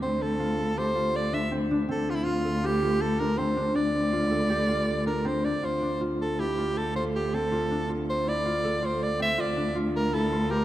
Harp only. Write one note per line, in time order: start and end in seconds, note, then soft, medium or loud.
0.00 1.51 C4 medium
0.00 1.32 D4 medium
0.00 0.39 F4 medium
0.00 0.77 G4 medium
0.00 0.58 A4 medium
0.40 0.95 F4 medium
0.58 2.44 A4 medium
0.77 2.63 G4 medium
0.95 2.26 F4 medium
1.33 1.70 D4 medium
1.51 1.88 C4 medium
1.71 3.19 D4 medium
1.89 3.38 C4 medium
2.26 2.82 F4 medium
2.45 4.30 A4 medium
2.64 4.49 G4 medium
2.83 4.12 F4 medium
3.20 3.56 D4 medium
3.38 5.24 C4 medium
3.57 3.75 D4 medium
3.75 5.06 D4 medium
4.13 4.68 F4 medium
4.31 6.50 A4 medium
4.50 6.85 G4 medium
4.68 5.63 F4 medium
5.06 5.44 D4 medium
5.25 7.33 C4 medium
5.45 5.81 D4 medium
5.63 6.00 F4 medium
5.82 7.70 D4 medium
6.01 6.45 F4 medium
6.39 6.64 E4 medium
6.58 6.95 F4 medium
6.77 8.64 A4 medium
6.95 7.51 F4 medium
7.33 9.19 C4 medium
7.52 7.89 F4 medium
7.71 9.56 D4 medium
7.89 8.33 F4 medium
8.27 8.51 E4 medium
8.45 8.82 F4 medium
8.64 10.65 A4 medium
8.83 9.37 F4 medium
9.20 10.65 C4 medium
9.38 9.75 F4 medium
9.56 10.65 D4 medium
9.75 10.19 F4 medium
10.13 10.38 E4 medium
10.32 10.65 F4 medium
10.50 10.65 G4 medium